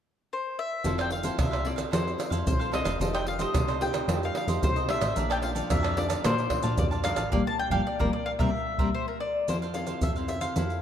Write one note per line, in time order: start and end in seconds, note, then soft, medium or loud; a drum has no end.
0.33 0.57 C5 medium
0.59 0.96 E5 medium
0.84 1.31 F1 loud
0.84 1.36 F3 medium
0.84 1.10 C4 medium
0.84 0.97 E4 soft
0.84 1.11 E4 medium
0.84 0.98 A4 medium
0.84 1.11 A4 medium
0.84 0.98 C5 medium
0.84 0.97 F5 medium
0.84 pandeiro medium
0.84 maracas medium
0.84 surdo medium
0.98 1.09 A4 soft
0.98 1.09 C5 medium
0.98 1.10 F5 medium
0.98 1.12 G5 medium
0.98 pandeiro soft
0.98 tamborim medium
0.98 maracas soft
1.10 1.37 F5 medium
1.10 muted cavaquinho stroke soft
1.10 pandeiro medium
1.23 1.61 C4 medium
1.23 1.61 E4 medium
1.23 1.37 A4 medium
1.23 1.61 A4 medium
1.23 1.37 C5 medium
1.23 1.37 F5 medium
1.23 pandeiro medium
1.23 maracas medium
1.38 1.84 C2 medium
1.38 1.90 C3 medium
1.38 1.51 E4 soft
1.38 1.51 A4 soft
1.38 1.51 C5 medium
1.38 1.67 E5 medium
1.38 1.50 F5 soft
1.38 pandeiro medium
1.38 tamborim medium
1.38 maracas medium
1.38 surdo loud
1.51 1.76 A4 soft
1.51 1.76 C5 medium
1.51 1.75 F5 medium
1.51 pandeiro soft
1.51 tamborim medium
1.51 maracas soft
1.65 1.81 C4 medium
1.65 1.82 E4 medium
1.65 1.82 A4 medium
1.65 1.74 D5 medium
1.65 pandeiro medium
1.76 1.91 A4 soft
1.76 1.91 C5 medium
1.76 1.90 F5 medium
1.76 pandeiro medium
1.76 tamborim medium
1.76 maracas medium
1.91 2.16 F2 medium
1.91 2.44 F3 medium
1.91 2.29 C4 medium
1.91 2.17 E4 soft
1.91 2.29 E4 medium
1.91 2.17 A4 soft
1.91 2.29 A4 medium
1.91 2.18 C5 medium
1.91 2.46 C5 medium
1.91 2.17 F5 medium
1.91 pandeiro medium
1.91 tamborim medium
1.91 maracas medium
1.91 surdo medium
2.07 pandeiro soft
2.07 maracas soft
2.18 muted cavaquinho stroke soft
2.18 pandeiro medium
2.18 tamborim medium
2.18 maracas medium
2.30 2.44 F2 medium
2.30 2.68 C4 medium
2.30 2.69 E4 medium
2.30 2.59 A4 soft
2.30 2.69 A4 medium
2.30 2.58 C5 medium
2.30 2.58 F5 medium
2.30 pandeiro medium
2.30 maracas medium
2.47 2.81 C2 medium
2.47 2.98 C3 medium
2.47 2.74 C5 medium
2.47 pandeiro medium
2.47 maracas medium
2.47 surdo loud
2.59 2.71 A4 medium
2.59 2.71 C5 medium
2.59 2.71 F5 medium
2.59 pandeiro soft
2.59 maracas soft
2.72 2.89 C4 medium
2.72 2.85 E4 soft
2.72 2.89 E4 medium
2.72 2.85 A4 medium
2.72 2.90 A4 medium
2.72 2.84 C5 medium
2.72 3.16 D#5 medium
2.72 2.83 F5 medium
2.72 pandeiro medium
2.72 tamborim medium
2.85 2.98 F1 medium
2.85 2.99 A4 soft
2.85 2.99 C5 medium
2.85 2.98 F5 medium
2.85 pandeiro medium
2.85 tamborim medium
2.85 maracas medium
3.00 3.46 F1 loud
3.00 3.52 F3 medium
3.00 3.26 A3 medium
3.00 3.26 D#4 medium
3.00 3.13 F4 soft
3.00 3.26 G4 medium
3.00 3.13 A4 medium
3.00 3.13 C5 medium
3.00 3.12 D#5 medium
3.00 pandeiro medium
3.00 maracas medium
3.00 surdo medium
3.14 3.25 A4 medium
3.14 3.26 C5 medium
3.14 3.25 D#5 medium
3.14 3.28 G5 medium
3.14 pandeiro soft
3.14 tamborim medium
3.14 maracas soft
3.26 3.40 F5 medium
3.26 muted cavaquinho stroke soft
3.26 pandeiro medium
3.39 3.77 A3 medium
3.39 3.77 D#4 medium
3.39 3.77 G4 medium
3.39 3.53 A4 medium
3.39 3.53 C5 medium
3.39 3.52 D#5 medium
3.39 3.83 D#5 medium
3.39 pandeiro medium
3.39 maracas medium
3.53 4.00 C2 medium
3.53 4.06 C3 medium
3.53 3.66 F4 soft
3.53 3.67 A4 soft
3.53 3.67 C5 soft
3.53 3.67 D#5 soft
3.53 pandeiro medium
3.53 tamborim medium
3.53 maracas medium
3.53 surdo loud
3.68 3.93 A4 medium
3.68 3.93 C5 medium
3.68 3.92 D#5 medium
3.68 pandeiro soft
3.68 tamborim medium
3.68 maracas soft
3.81 4.04 A3 medium
3.81 4.04 D#4 medium
3.81 4.04 G4 medium
3.81 4.23 G5 medium
3.81 pandeiro medium
3.93 4.07 A4 soft
3.93 4.07 C5 medium
3.93 4.07 D#5 medium
3.93 pandeiro medium
3.93 tamborim medium
3.93 maracas medium
4.08 4.31 F2 loud
4.08 4.60 F3 medium
4.08 4.45 A3 medium
4.08 4.45 D#4 medium
4.08 4.34 F4 soft
4.08 4.45 G4 medium
4.08 4.34 A4 soft
4.08 4.35 C5 soft
4.08 4.35 D#5 medium
4.08 pandeiro medium
4.08 tamborim medium
4.08 maracas medium
4.08 surdo medium
4.23 4.36 F5 medium
4.23 pandeiro soft
4.23 maracas soft
4.35 4.64 F5 medium
4.35 muted cavaquinho stroke soft
4.35 pandeiro medium
4.35 tamborim medium
4.47 4.60 F2 medium
4.47 4.85 A3 medium
4.47 4.85 D#4 medium
4.47 4.85 G4 medium
4.47 4.75 A4 medium
4.47 4.75 C5 medium
4.47 4.74 D#5 medium
4.47 pandeiro medium
4.47 maracas medium
4.62 4.97 C2 loud
4.62 5.14 C3 medium
4.62 4.91 C5 medium
4.62 pandeiro medium
4.62 maracas medium
4.62 surdo loud
4.76 4.88 A4 medium
4.76 4.88 C5 medium
4.76 4.88 D#5 medium
4.76 pandeiro soft
4.76 maracas soft
4.88 5.05 A3 medium
4.88 5.05 D#4 medium
4.88 5.02 F4 soft
4.88 5.05 G4 medium
4.88 5.01 A4 medium
4.88 5.00 C5 medium
4.88 4.99 D#5 medium
4.88 5.32 E5 loud
4.88 pandeiro medium
4.88 tamborim medium
5.01 5.14 A1 medium
5.01 5.15 A4 medium
5.01 5.15 C5 medium
5.01 5.14 D#5 medium
5.01 pandeiro medium
5.01 tamborim medium
5.01 maracas medium
5.16 5.62 A#1 loud
5.16 5.68 A#2 medium
5.16 5.53 F3 medium
5.16 5.53 A3 medium
5.16 5.53 D4 medium
5.16 5.29 A#4 medium
5.16 5.29 D5 medium
5.16 5.29 F5 soft
5.16 5.29 A5 medium
5.16 pandeiro medium
5.16 maracas medium
5.16 surdo medium
5.30 5.41 D5 medium
5.30 5.41 F5 medium
5.30 5.37 G5 medium
5.30 5.41 A5 medium
5.30 pandeiro soft
5.30 tamborim medium
5.30 maracas soft
5.42 5.50 F5 medium
5.42 muted cavaquinho stroke soft
5.42 pandeiro medium
5.55 5.92 F3 medium
5.55 5.92 A3 medium
5.55 5.93 D4 medium
5.55 5.69 D5 medium
5.55 5.69 F5 medium
5.55 5.68 A5 medium
5.55 pandeiro medium
5.55 maracas medium
5.70 6.22 F2 medium
5.70 6.17 F2 medium
5.70 5.82 A#4 soft
5.70 5.83 D5 soft
5.70 5.98 E5 loud
5.70 5.82 F5 soft
5.70 5.81 A5 medium
5.70 pandeiro medium
5.70 tamborim medium
5.70 maracas medium
5.70 surdo medium
5.83 6.09 D5 medium
5.83 6.08 F5 medium
5.83 6.07 A5 medium
5.83 pandeiro soft
5.83 tamborim medium
5.83 maracas soft
5.97 6.20 F3 medium
5.97 6.20 A3 medium
5.97 6.20 D4 medium
5.97 6.05 D5 medium
5.97 pandeiro medium
6.08 6.23 D5 medium
6.08 6.23 F5 medium
6.08 6.22 A5 medium
6.08 pandeiro medium
6.08 tamborim medium
6.08 maracas medium
6.24 6.76 A#2 medium
6.24 6.48 A#2 loud
6.24 6.61 F3 medium
6.24 6.61 A3 medium
6.24 6.61 D4 medium
6.24 6.48 A#4 soft
6.24 6.78 C5 medium
6.24 6.49 D5 medium
6.24 6.49 F5 soft
6.24 6.49 A5 medium
6.24 pandeiro medium
6.24 tamborim medium
6.24 maracas medium
6.24 surdo medium
6.38 pandeiro soft
6.38 maracas soft
6.49 muted cavaquinho stroke soft
6.49 pandeiro medium
6.49 tamborim medium
6.49 surdo medium
6.63 6.76 A#2 medium
6.63 7.00 F3 medium
6.63 7.00 A3 medium
6.63 7.01 D4 medium
6.63 6.91 D5 medium
6.63 6.90 F5 medium
6.63 6.90 A5 medium
6.63 pandeiro medium
6.63 maracas medium
6.78 7.13 F2 medium
6.78 7.30 F2 medium
6.78 6.86 D5 medium
6.78 pandeiro medium
6.78 maracas medium
6.78 surdo loud
6.91 7.03 D5 medium
6.91 7.04 F5 medium
6.91 7.04 A5 medium
6.91 pandeiro soft
6.91 maracas soft
7.04 7.21 F3 medium
7.04 7.21 A3 medium
7.04 7.21 D4 medium
7.04 7.17 A#4 medium
7.04 7.17 D5 medium
7.04 7.47 F5 loud
7.04 7.16 F5 medium
7.04 7.15 A5 medium
7.04 pandeiro medium
7.04 tamborim medium
7.04 maracas medium
7.16 7.29 A1 medium
7.16 7.31 D5 medium
7.16 7.30 F5 medium
7.16 7.30 A5 medium
7.16 pandeiro medium
7.16 tamborim medium
7.16 maracas medium
7.32 7.42 G1 loud
7.32 7.41 F3 medium
7.32 7.41 G3 loud
7.32 7.41 A#3 medium
7.32 7.41 D5 medium
7.32 7.41 F5 medium
7.32 7.41 G5 medium
7.32 surdo loud
7.47 7.59 A5 loud
7.59 7.71 G5 loud
7.70 7.82 G1 loud
7.70 7.81 F3 medium
7.70 7.81 G3 medium
7.70 7.81 A#3 medium
7.70 7.80 D5 medium
7.70 7.86 F5 medium
7.70 7.80 F5 medium
7.70 7.81 G5 loud
7.70 surdo medium
7.87 8.00 D5 medium
7.99 8.10 G1 medium
7.99 8.09 F3 medium
7.99 8.09 G3 medium
7.99 8.09 A#3 medium
7.99 8.13 A#4 medium
7.99 8.08 D5 medium
7.99 8.08 F5 medium
7.99 8.08 G5 medium
7.99 surdo loud
8.13 8.27 D5 medium
8.26 8.31 F5 medium
8.39 8.51 C2 loud
8.39 8.49 G3 medium
8.39 8.49 A#3 medium
8.39 8.49 C4 medium
8.39 8.49 A#4 medium
8.39 8.49 C5 medium
8.39 9.17 E5 medium
8.39 8.49 E5 medium
8.39 surdo loud
8.78 8.90 C2 medium
8.78 8.89 G3 medium
8.78 8.89 A#3 medium
8.78 8.89 C4 medium
8.78 8.88 A#4 medium
8.78 8.88 C5 medium
8.78 8.88 E5 medium
8.78 surdo medium
8.95 9.07 C5 medium
9.08 9.20 A#4 medium
9.20 9.48 D5 medium
9.48 9.94 F2 medium
9.48 10.00 F3 medium
9.48 9.64 C4 medium
9.48 9.61 E4 soft
9.48 9.65 E4 medium
9.48 9.61 A4 soft
9.48 9.65 A4 medium
9.48 9.56 C5 medium
9.48 9.61 C5 medium
9.48 9.61 F5 medium
9.48 pandeiro medium
9.48 maracas medium
9.48 surdo medium
9.62 9.74 A4 medium
9.62 9.74 C5 medium
9.62 9.74 F5 medium
9.62 pandeiro soft
9.62 maracas soft
9.74 10.01 C4 medium
9.74 10.01 E4 soft
9.74 10.01 A4 medium
9.74 10.00 F5 medium
9.74 muted cavaquinho stroke soft
9.74 pandeiro medium
9.74 maracas medium
9.87 10.01 A4 medium
9.87 10.01 C5 medium
9.87 10.00 F5 medium
9.87 pandeiro medium
9.87 maracas medium
10.01 10.48 F2 medium
10.01 10.54 C3 medium
10.01 10.15 E4 soft
10.01 10.15 A4 soft
10.01 10.15 C5 soft
10.01 10.10 E5 medium
10.01 10.15 F5 soft
10.01 pandeiro medium
10.01 maracas medium
10.01 surdo medium
10.16 10.53 C4 medium
10.16 10.53 E4 soft
10.16 10.41 A4 soft
10.16 10.53 A4 medium
10.16 10.40 C5 soft
10.16 10.40 F5 medium
10.16 pandeiro soft
10.16 maracas soft
10.28 10.41 E5 medium
10.28 pandeiro medium
10.28 maracas medium
10.41 10.55 A4 soft
10.41 10.54 C5 medium
10.41 10.54 F5 medium
10.41 10.80 F5 medium
10.41 pandeiro medium
10.41 maracas medium
10.55 10.82 F2 medium
10.55 10.82 F3 medium
10.55 10.80 C4 medium
10.55 10.81 E4 soft
10.55 10.80 E4 medium
10.55 10.81 A4 soft
10.55 10.80 A4 soft
10.55 10.82 C5 soft
10.55 10.82 F5 soft
10.55 pandeiro medium
10.55 maracas medium
10.55 surdo medium
10.70 pandeiro soft
10.70 maracas soft